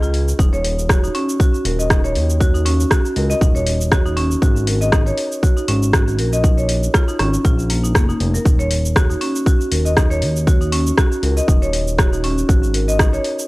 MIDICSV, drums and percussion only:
0, 0, Header, 1, 2, 480
1, 0, Start_track
1, 0, Key_signature, -6, "minor"
1, 0, Tempo, 504202
1, 368, Time_signature, 4, 2, 24, 8
1, 12829, End_track
2, 0, Start_track
2, 0, Title_t, "Drums"
2, 29, Note_on_c, 9, 69, 41
2, 124, Note_off_c, 9, 69, 0
2, 132, Note_on_c, 9, 46, 74
2, 227, Note_off_c, 9, 46, 0
2, 269, Note_on_c, 9, 69, 83
2, 364, Note_off_c, 9, 69, 0
2, 370, Note_on_c, 9, 36, 120
2, 378, Note_on_c, 9, 69, 67
2, 466, Note_off_c, 9, 36, 0
2, 473, Note_off_c, 9, 69, 0
2, 510, Note_on_c, 9, 69, 41
2, 605, Note_off_c, 9, 69, 0
2, 614, Note_on_c, 9, 46, 86
2, 709, Note_off_c, 9, 46, 0
2, 750, Note_on_c, 9, 69, 80
2, 845, Note_off_c, 9, 69, 0
2, 850, Note_on_c, 9, 36, 120
2, 853, Note_on_c, 9, 37, 102
2, 857, Note_on_c, 9, 69, 66
2, 946, Note_off_c, 9, 36, 0
2, 948, Note_off_c, 9, 37, 0
2, 953, Note_off_c, 9, 69, 0
2, 990, Note_on_c, 9, 69, 40
2, 1085, Note_off_c, 9, 69, 0
2, 1093, Note_on_c, 9, 46, 79
2, 1188, Note_off_c, 9, 46, 0
2, 1229, Note_on_c, 9, 69, 81
2, 1324, Note_off_c, 9, 69, 0
2, 1331, Note_on_c, 9, 36, 121
2, 1337, Note_on_c, 9, 69, 67
2, 1426, Note_off_c, 9, 36, 0
2, 1432, Note_off_c, 9, 69, 0
2, 1469, Note_on_c, 9, 69, 40
2, 1564, Note_off_c, 9, 69, 0
2, 1572, Note_on_c, 9, 46, 85
2, 1667, Note_off_c, 9, 46, 0
2, 1709, Note_on_c, 9, 69, 82
2, 1805, Note_off_c, 9, 69, 0
2, 1810, Note_on_c, 9, 36, 124
2, 1811, Note_on_c, 9, 37, 102
2, 1816, Note_on_c, 9, 69, 66
2, 1905, Note_off_c, 9, 36, 0
2, 1906, Note_off_c, 9, 37, 0
2, 1911, Note_off_c, 9, 69, 0
2, 1948, Note_on_c, 9, 69, 39
2, 2044, Note_off_c, 9, 69, 0
2, 2051, Note_on_c, 9, 46, 77
2, 2146, Note_off_c, 9, 46, 0
2, 2187, Note_on_c, 9, 69, 82
2, 2282, Note_off_c, 9, 69, 0
2, 2290, Note_on_c, 9, 36, 115
2, 2295, Note_on_c, 9, 69, 62
2, 2385, Note_off_c, 9, 36, 0
2, 2390, Note_off_c, 9, 69, 0
2, 2428, Note_on_c, 9, 69, 41
2, 2523, Note_off_c, 9, 69, 0
2, 2531, Note_on_c, 9, 46, 93
2, 2626, Note_off_c, 9, 46, 0
2, 2667, Note_on_c, 9, 69, 75
2, 2762, Note_off_c, 9, 69, 0
2, 2769, Note_on_c, 9, 36, 114
2, 2769, Note_on_c, 9, 37, 103
2, 2774, Note_on_c, 9, 69, 66
2, 2864, Note_off_c, 9, 36, 0
2, 2864, Note_off_c, 9, 37, 0
2, 2869, Note_off_c, 9, 69, 0
2, 2907, Note_on_c, 9, 69, 40
2, 3002, Note_off_c, 9, 69, 0
2, 3010, Note_on_c, 9, 46, 82
2, 3105, Note_off_c, 9, 46, 0
2, 3147, Note_on_c, 9, 69, 80
2, 3242, Note_off_c, 9, 69, 0
2, 3249, Note_on_c, 9, 36, 121
2, 3254, Note_on_c, 9, 69, 65
2, 3344, Note_off_c, 9, 36, 0
2, 3350, Note_off_c, 9, 69, 0
2, 3387, Note_on_c, 9, 69, 41
2, 3482, Note_off_c, 9, 69, 0
2, 3489, Note_on_c, 9, 46, 89
2, 3585, Note_off_c, 9, 46, 0
2, 3626, Note_on_c, 9, 69, 80
2, 3722, Note_off_c, 9, 69, 0
2, 3728, Note_on_c, 9, 36, 122
2, 3729, Note_on_c, 9, 37, 101
2, 3734, Note_on_c, 9, 69, 64
2, 3823, Note_off_c, 9, 36, 0
2, 3824, Note_off_c, 9, 37, 0
2, 3829, Note_off_c, 9, 69, 0
2, 3866, Note_on_c, 9, 69, 38
2, 3961, Note_off_c, 9, 69, 0
2, 3969, Note_on_c, 9, 46, 78
2, 4064, Note_off_c, 9, 46, 0
2, 4105, Note_on_c, 9, 69, 78
2, 4201, Note_off_c, 9, 69, 0
2, 4208, Note_on_c, 9, 36, 114
2, 4212, Note_on_c, 9, 69, 62
2, 4303, Note_off_c, 9, 36, 0
2, 4308, Note_off_c, 9, 69, 0
2, 4345, Note_on_c, 9, 69, 39
2, 4440, Note_off_c, 9, 69, 0
2, 4448, Note_on_c, 9, 46, 91
2, 4543, Note_off_c, 9, 46, 0
2, 4585, Note_on_c, 9, 69, 76
2, 4681, Note_off_c, 9, 69, 0
2, 4687, Note_on_c, 9, 37, 106
2, 4688, Note_on_c, 9, 36, 120
2, 4691, Note_on_c, 9, 69, 62
2, 4782, Note_off_c, 9, 37, 0
2, 4783, Note_off_c, 9, 36, 0
2, 4786, Note_off_c, 9, 69, 0
2, 4824, Note_on_c, 9, 69, 38
2, 4919, Note_off_c, 9, 69, 0
2, 4927, Note_on_c, 9, 46, 85
2, 5022, Note_off_c, 9, 46, 0
2, 5065, Note_on_c, 9, 69, 78
2, 5160, Note_off_c, 9, 69, 0
2, 5168, Note_on_c, 9, 36, 116
2, 5174, Note_on_c, 9, 69, 63
2, 5263, Note_off_c, 9, 36, 0
2, 5269, Note_off_c, 9, 69, 0
2, 5305, Note_on_c, 9, 69, 40
2, 5401, Note_off_c, 9, 69, 0
2, 5408, Note_on_c, 9, 46, 93
2, 5504, Note_off_c, 9, 46, 0
2, 5545, Note_on_c, 9, 69, 76
2, 5641, Note_off_c, 9, 69, 0
2, 5648, Note_on_c, 9, 36, 114
2, 5649, Note_on_c, 9, 37, 107
2, 5653, Note_on_c, 9, 69, 65
2, 5743, Note_off_c, 9, 36, 0
2, 5744, Note_off_c, 9, 37, 0
2, 5749, Note_off_c, 9, 69, 0
2, 5786, Note_on_c, 9, 69, 37
2, 5881, Note_off_c, 9, 69, 0
2, 5888, Note_on_c, 9, 46, 84
2, 5984, Note_off_c, 9, 46, 0
2, 6025, Note_on_c, 9, 69, 77
2, 6120, Note_off_c, 9, 69, 0
2, 6128, Note_on_c, 9, 36, 120
2, 6132, Note_on_c, 9, 69, 65
2, 6223, Note_off_c, 9, 36, 0
2, 6227, Note_off_c, 9, 69, 0
2, 6264, Note_on_c, 9, 69, 39
2, 6359, Note_off_c, 9, 69, 0
2, 6367, Note_on_c, 9, 46, 93
2, 6462, Note_off_c, 9, 46, 0
2, 6504, Note_on_c, 9, 69, 78
2, 6599, Note_off_c, 9, 69, 0
2, 6606, Note_on_c, 9, 37, 107
2, 6608, Note_on_c, 9, 36, 117
2, 6611, Note_on_c, 9, 69, 64
2, 6702, Note_off_c, 9, 37, 0
2, 6704, Note_off_c, 9, 36, 0
2, 6707, Note_off_c, 9, 69, 0
2, 6744, Note_on_c, 9, 69, 39
2, 6839, Note_off_c, 9, 69, 0
2, 6848, Note_on_c, 9, 37, 66
2, 6848, Note_on_c, 9, 46, 83
2, 6943, Note_off_c, 9, 37, 0
2, 6943, Note_off_c, 9, 46, 0
2, 6984, Note_on_c, 9, 69, 80
2, 7079, Note_off_c, 9, 69, 0
2, 7089, Note_on_c, 9, 36, 114
2, 7092, Note_on_c, 9, 69, 64
2, 7184, Note_off_c, 9, 36, 0
2, 7187, Note_off_c, 9, 69, 0
2, 7226, Note_on_c, 9, 69, 40
2, 7321, Note_off_c, 9, 69, 0
2, 7329, Note_on_c, 9, 46, 98
2, 7424, Note_off_c, 9, 46, 0
2, 7467, Note_on_c, 9, 69, 77
2, 7562, Note_off_c, 9, 69, 0
2, 7569, Note_on_c, 9, 36, 117
2, 7569, Note_on_c, 9, 37, 107
2, 7573, Note_on_c, 9, 69, 64
2, 7664, Note_off_c, 9, 36, 0
2, 7664, Note_off_c, 9, 37, 0
2, 7669, Note_off_c, 9, 69, 0
2, 7708, Note_on_c, 9, 69, 38
2, 7803, Note_off_c, 9, 69, 0
2, 7810, Note_on_c, 9, 46, 83
2, 7905, Note_off_c, 9, 46, 0
2, 7947, Note_on_c, 9, 69, 78
2, 8042, Note_off_c, 9, 69, 0
2, 8049, Note_on_c, 9, 36, 119
2, 8055, Note_on_c, 9, 69, 64
2, 8144, Note_off_c, 9, 36, 0
2, 8151, Note_off_c, 9, 69, 0
2, 8187, Note_on_c, 9, 69, 42
2, 8283, Note_off_c, 9, 69, 0
2, 8289, Note_on_c, 9, 46, 97
2, 8384, Note_off_c, 9, 46, 0
2, 8428, Note_on_c, 9, 69, 83
2, 8524, Note_off_c, 9, 69, 0
2, 8529, Note_on_c, 9, 36, 118
2, 8531, Note_on_c, 9, 37, 111
2, 8536, Note_on_c, 9, 69, 64
2, 8624, Note_off_c, 9, 36, 0
2, 8626, Note_off_c, 9, 37, 0
2, 8631, Note_off_c, 9, 69, 0
2, 8668, Note_on_c, 9, 69, 39
2, 8763, Note_off_c, 9, 69, 0
2, 8770, Note_on_c, 9, 46, 85
2, 8865, Note_off_c, 9, 46, 0
2, 8907, Note_on_c, 9, 69, 81
2, 9002, Note_off_c, 9, 69, 0
2, 9009, Note_on_c, 9, 36, 121
2, 9015, Note_on_c, 9, 69, 67
2, 9104, Note_off_c, 9, 36, 0
2, 9110, Note_off_c, 9, 69, 0
2, 9148, Note_on_c, 9, 69, 42
2, 9243, Note_off_c, 9, 69, 0
2, 9250, Note_on_c, 9, 46, 97
2, 9345, Note_off_c, 9, 46, 0
2, 9386, Note_on_c, 9, 69, 81
2, 9481, Note_off_c, 9, 69, 0
2, 9489, Note_on_c, 9, 36, 126
2, 9489, Note_on_c, 9, 37, 113
2, 9494, Note_on_c, 9, 69, 66
2, 9584, Note_off_c, 9, 36, 0
2, 9585, Note_off_c, 9, 37, 0
2, 9589, Note_off_c, 9, 69, 0
2, 9627, Note_on_c, 9, 69, 40
2, 9722, Note_off_c, 9, 69, 0
2, 9729, Note_on_c, 9, 46, 85
2, 9824, Note_off_c, 9, 46, 0
2, 9866, Note_on_c, 9, 69, 78
2, 9961, Note_off_c, 9, 69, 0
2, 9969, Note_on_c, 9, 36, 123
2, 9974, Note_on_c, 9, 69, 68
2, 10064, Note_off_c, 9, 36, 0
2, 10069, Note_off_c, 9, 69, 0
2, 10105, Note_on_c, 9, 69, 42
2, 10200, Note_off_c, 9, 69, 0
2, 10209, Note_on_c, 9, 46, 93
2, 10304, Note_off_c, 9, 46, 0
2, 10345, Note_on_c, 9, 69, 82
2, 10440, Note_off_c, 9, 69, 0
2, 10449, Note_on_c, 9, 36, 126
2, 10449, Note_on_c, 9, 37, 111
2, 10453, Note_on_c, 9, 69, 69
2, 10544, Note_off_c, 9, 36, 0
2, 10544, Note_off_c, 9, 37, 0
2, 10549, Note_off_c, 9, 69, 0
2, 10586, Note_on_c, 9, 69, 42
2, 10681, Note_off_c, 9, 69, 0
2, 10690, Note_on_c, 9, 46, 85
2, 10785, Note_off_c, 9, 46, 0
2, 10827, Note_on_c, 9, 69, 86
2, 10922, Note_off_c, 9, 69, 0
2, 10929, Note_on_c, 9, 36, 126
2, 10936, Note_on_c, 9, 69, 70
2, 11024, Note_off_c, 9, 36, 0
2, 11031, Note_off_c, 9, 69, 0
2, 11067, Note_on_c, 9, 69, 43
2, 11162, Note_off_c, 9, 69, 0
2, 11169, Note_on_c, 9, 46, 90
2, 11265, Note_off_c, 9, 46, 0
2, 11305, Note_on_c, 9, 69, 84
2, 11401, Note_off_c, 9, 69, 0
2, 11409, Note_on_c, 9, 36, 126
2, 11411, Note_on_c, 9, 37, 112
2, 11416, Note_on_c, 9, 69, 69
2, 11504, Note_off_c, 9, 36, 0
2, 11506, Note_off_c, 9, 37, 0
2, 11511, Note_off_c, 9, 69, 0
2, 11547, Note_on_c, 9, 69, 42
2, 11642, Note_off_c, 9, 69, 0
2, 11650, Note_on_c, 9, 46, 80
2, 11745, Note_off_c, 9, 46, 0
2, 11787, Note_on_c, 9, 69, 83
2, 11882, Note_off_c, 9, 69, 0
2, 11889, Note_on_c, 9, 36, 127
2, 11895, Note_on_c, 9, 69, 69
2, 11984, Note_off_c, 9, 36, 0
2, 11990, Note_off_c, 9, 69, 0
2, 12027, Note_on_c, 9, 69, 43
2, 12122, Note_off_c, 9, 69, 0
2, 12130, Note_on_c, 9, 46, 90
2, 12225, Note_off_c, 9, 46, 0
2, 12267, Note_on_c, 9, 69, 86
2, 12362, Note_off_c, 9, 69, 0
2, 12369, Note_on_c, 9, 36, 127
2, 12370, Note_on_c, 9, 37, 109
2, 12374, Note_on_c, 9, 69, 71
2, 12464, Note_off_c, 9, 36, 0
2, 12465, Note_off_c, 9, 37, 0
2, 12470, Note_off_c, 9, 69, 0
2, 12507, Note_on_c, 9, 69, 43
2, 12602, Note_off_c, 9, 69, 0
2, 12608, Note_on_c, 9, 46, 79
2, 12703, Note_off_c, 9, 46, 0
2, 12747, Note_on_c, 9, 69, 85
2, 12829, Note_off_c, 9, 69, 0
2, 12829, End_track
0, 0, End_of_file